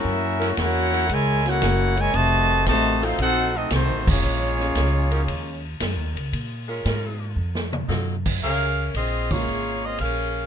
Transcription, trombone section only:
X:1
M:4/4
L:1/8
Q:"Swing" 1/4=115
K:Bbm
V:1 name="Trombone section"
[B,D=E]2 [B,DG]2 A, [B,DG]2 A, | [C,E,=A,]2 [C,E,A,] [A,CF] [CEG] [A,CE] [E,A,C] [F,_A,D]- | [F,A,D]4- [F,A,D] z3 | z8 |
z8 |]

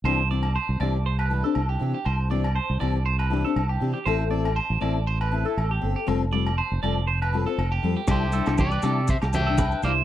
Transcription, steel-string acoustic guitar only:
X:1
M:4/4
L:1/16
Q:"Swing 16ths" 1/4=120
K:C
V:1 name="Steel-string acoustic guitar"
[E,CDG] z [E,CDG] z3 [E,CDG] z3 [E,DG] [CDG] z2 [E,CDG] z | z2 [E,CDG] z3 [E,CDG] z3 [E,CDG] [CDG] z2 [E,CDG] z | [CEA] z [CEA] z3 [CEA] z3 [CEA] [EA] z2 [CA] z | [G,CFA] z [G,CFA] z3 [G,CFA] z3 [G,CFA] [CFA] z2 [G,CFA] z |
[G,DE] z [G,DE] [DE] z2 [G,DE] z4 D z2 [G,DE] z |]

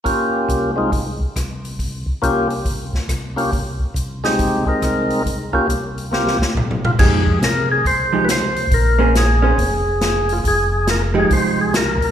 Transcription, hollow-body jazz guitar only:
X:1
M:4/4
L:1/8
Q:"Swing" 1/4=139
K:Fm
V:1 name="Hollow-body jazz guitar"
z8 | z8 | z8 | z8 |
[F,A,EG] z4 [F,A,EG] z2 | z [B,DAc] z [B,DAc] z4 | z3 [F,A,EG]3 z2 |]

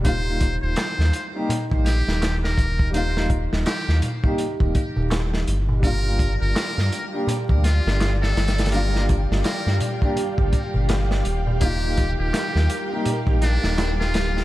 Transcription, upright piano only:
X:1
M:4/4
L:1/16
Q:"Swing 16ths" 1/4=83
K:Eblyd
V:1 name="Upright piano"
[G,B,EF]6- [G,B,EF] [G,B,EG]3 z6 | [G,B,EF]6- [G,B,EF] [G,B,EG]3 z6 | [G,B,DF]6- [G,B,DF] [G,B,DG]3 z6 | [G,B,DF]6- [G,B,DF] [G,B,DG]3 z6 |
[G,B,EF]6- [G,B,EF] [G,B,EG]3 z6 |]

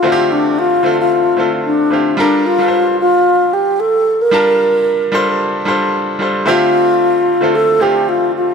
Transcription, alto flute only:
X:1
M:4/4
L:1/16
Q:"Swing 16ths" 1/4=112
K:Dm
V:1 name="Alto flute"
F2 D2 F3 F4 z D4 | D2 F4 F4 G2 A3 B- | B6- B z8 z | F8 A2 G2 F2 F2 |]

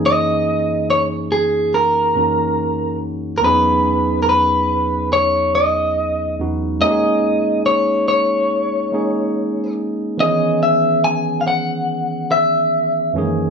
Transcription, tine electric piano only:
X:1
M:4/4
L:1/8
Q:"Swing 16ths" 1/4=71
K:C#dor
V:1 name="Tine electric piano"
[F,,E,A,CDG]4- [F,,E,A,CDG] [F,,E,A,CDF]3 | [E,,F,B,CDG]6- [E,,F,B,CDG] [E,,F,B,CDF] | [G,A,CD=G^G]4- [G,A,CD=G^G] [G,A,CDG]3 | [D,E,B,CG]6- [D,E,B,CG] [F,,D,E,G,A,CG] |]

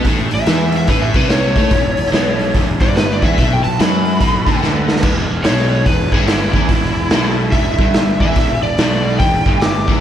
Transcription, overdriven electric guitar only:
X:1
M:4/4
L:1/8
Q:"Swing" 1/4=144
K:Emix
V:1 name="Overdriven electric guitar" clef=bass
A,, A,, E,2 A,, =C,2 A, | E,, E,, B,,2 E,, =G,,2 E, | B,, B,, F,2 B,, D, D,2 | E,, E,, B,,2 E,, =G,,2 E, |
E,, E,, B,,2 E,, =G,,2 E, | E,, E,, B,,2 E,, =G,,2 E, |]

